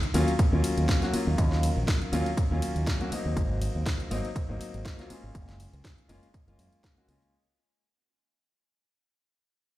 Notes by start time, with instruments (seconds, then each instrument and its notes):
0.03 closed hi-hat
0.14 fingered electric bass D#2, grand piano F#3 A#3 C#4 F4, open hi-hat, ride
0.28 closed hi-hat
0.39 muted fingered electric bass stroke, kick, closed hi-hat
0.52 fingered electric bass D#2, grand piano F#3 A#3 C#4 F4
0.64 open hi-hat, ride
0.78 fingered electric bass D#2, closed hi-hat
0.89 kick, snare, closed hi-hat
1.02 grand piano F#3 A#3 C#4 F#4, snare, closed hi-hat
1.12 grand piano F#3 A#3 C#4 F4, muted fingered electric bass stroke, open hi-hat, ride
1.27 fingered electric bass D#2
1.38 fingered electric bass D#2, kick, closed hi-hat
1.52 snare
1.63 open hi-hat, ride
1.77 fingered electric bass A#1
1.88 kick, snare, closed hi-hat
2.02 closed hi-hat
2.12 fingered electric bass D#2, grand piano F#3 A#3 C#4 F4, open hi-hat, ride
2.26 closed hi-hat
2.37 kick, closed hi-hat
2.51 fingered electric bass D#2, grand piano F#3 A#3 C#4 F4
2.62 open hi-hat, ride
2.76 fingered electric bass D#2, closed hi-hat
2.87 kick, snare, closed hi-hat
3.00 grand piano F#3 A#3 C#4 F#4, closed hi-hat
3.11 grand piano F#3 A#3 C4 D#4, muted fingered electric bass stroke, open hi-hat, ride
3.26 fingered electric bass D#2
3.37 fingered electric bass G#1, kick, closed hi-hat
3.62 open hi-hat, ride
3.75 fingered electric bass D#2
3.86 kick, snare, closed hi-hat
4.00 closed hi-hat
4.11 fingered electric bass G#1, grand piano F#3 A#3 C4 D#4, open hi-hat, ride
4.25 closed hi-hat
4.36 muted fingered electric bass stroke, kick, closed hi-hat
4.49 fingered electric bass G#1, grand piano F#3 A#3 C4 D#4
4.61 open hi-hat, ride
4.74 fingered electric bass G#1, closed hi-hat
4.85 kick, snare, closed hi-hat
4.98 grand piano F#3 A#3 C4 F4, snare, closed hi-hat
5.09 grand piano G#3 A#3 C#4 F4, muted fingered electric bass stroke, open hi-hat, ride
5.24 fingered electric bass G#1
5.35 fingered electric bass F#1, kick, closed hi-hat
5.49 snare, closed hi-hat
5.60 open hi-hat, ride
5.73 fingered electric bass C#2, closed hi-hat
5.84 kick, snare, closed hi-hat
5.98 closed hi-hat
6.09 fingered electric bass F#1, grand piano G#3 A#3 C#4 F4, open hi-hat, ride
6.23 closed hi-hat
6.34 kick, closed hi-hat
6.47 fingered electric bass F#1, grand piano G#3 A#3 C#4 F4, closed hi-hat
6.59 fingered electric bass F#2, open hi-hat, ride
6.72 closed hi-hat
6.84 kick, snare, closed hi-hat
6.97 grand piano G#3 A#3 C#4 F#4, closed hi-hat
7.08 fingered electric bass C#2, grand piano G#3 A#3 C#4 F4, open hi-hat, ride
7.22 closed hi-hat